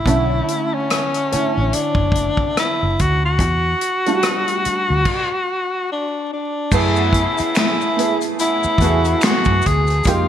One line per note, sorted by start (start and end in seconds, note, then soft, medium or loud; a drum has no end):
0.00 0.76 E4 medium
0.06 0.40 B1 medium
0.06 1.02 D3 medium
0.06 1.01 A3 medium
0.06 1.02 C#4 medium
0.06 1.02 E4 medium
0.06 kick medium
0.06 closed hi-hat medium
0.48 closed hi-hat medium
0.74 1.76 C#4 medium
0.90 cross-stick medium
0.90 closed hi-hat medium
1.14 closed hi-hat soft
1.32 2.57 D3 medium
1.32 2.56 A3 medium
1.32 2.57 E4 medium
1.32 2.56 C#5 medium
1.32 muted fingered electric bass stroke soft
1.32 closed hi-hat medium
1.57 1.71 A1 medium
1.73 2.57 D4 medium
1.73 closed hi-hat medium
1.95 2.30 F#1 medium
1.95 kick medium
2.12 kick medium
2.12 closed hi-hat medium
2.37 kick medium
2.57 3.02 E4 medium
2.57 cross-stick loud
2.57 closed hi-hat medium
2.83 2.96 F#1 medium
2.99 3.40 D2 medium
2.99 3.23 F#4 medium
2.99 kick medium
2.99 closed hi-hat medium
3.25 5.87 F#4 medium
3.39 3.73 E2 medium
3.39 kick medium
3.39 closed hi-hat medium
3.81 closed hi-hat medium
4.06 5.07 G3 medium
4.06 5.07 A3 medium
4.06 5.07 D4 medium
4.06 4.12 F4 medium
4.06 closed hi-hat soft
4.15 5.11 F#4 medium
4.23 cross-stick medium
4.23 closed hi-hat medium
4.48 closed hi-hat soft
4.65 muted fingered electric bass stroke soft
4.65 closed hi-hat medium
4.90 5.04 D2 medium
5.05 kick medium
5.05 crash medium
5.92 6.29 D4 medium
6.33 6.75 D4 medium
6.72 7.26 F#2 medium
6.72 7.68 A3 medium
6.72 7.68 B3 medium
6.72 7.68 E4 medium
6.72 7.56 E4 medium
6.72 7.69 G#4 loud
6.72 kick loud
6.72 crash medium
6.72 maracas medium
6.96 7.10 C#3 medium
6.96 7.10 B3 medium
6.96 7.10 F#4 medium
6.96 maracas soft
7.13 7.93 C#3 medium
7.13 7.93 B3 medium
7.13 7.93 E4 medium
7.13 kick medium
7.13 closed hi-hat medium
7.38 muted fingered electric bass stroke soft
7.38 closed hi-hat soft
7.38 maracas soft
7.55 8.24 E4 medium
7.55 finger snap medium
7.55 snare loud
7.55 closed hi-hat medium
7.55 maracas medium
7.81 maracas soft
7.97 8.63 A3 medium
7.97 8.63 B3 medium
7.97 8.64 E4 medium
7.97 8.64 G#4 medium
7.97 closed hi-hat medium
8.21 closed hi-hat soft
8.21 maracas medium
8.38 8.72 C#3 medium
8.38 8.72 B3 medium
8.38 8.72 E4 medium
8.38 9.26 E4 loud
8.38 closed hi-hat medium
8.38 maracas medium
8.63 muted fingered electric bass stroke soft
8.63 maracas soft
8.78 9.14 E2 medium
8.78 9.42 C#3 medium
8.78 9.76 A3 medium
8.78 9.42 B3 medium
8.78 9.77 B3 medium
8.78 9.42 F#4 medium
8.78 kick medium
8.78 closed hi-hat medium
8.78 maracas soft
8.83 9.77 E4 medium
8.83 9.77 G#4 medium
9.05 closed hi-hat soft
9.05 maracas soft
9.21 finger snap medium
9.21 maracas medium
9.23 9.68 F#4 loud
9.23 finger snap medium
9.23 snare loud
9.23 closed hi-hat medium
9.45 9.61 F#2 medium
9.45 kick medium
9.45 maracas soft
9.62 closed hi-hat medium
9.62 maracas medium
9.66 10.00 D2 medium
9.66 10.10 G#4 medium
9.66 kick medium
9.87 closed hi-hat soft
9.87 maracas soft
10.04 10.28 F2 loud
10.04 10.28 G#3 medium
10.04 10.28 A#3 medium
10.04 10.28 D#4 medium
10.04 kick loud
10.04 closed hi-hat medium
10.04 maracas medium
10.08 10.28 F4 loud
10.08 10.28 G4 loud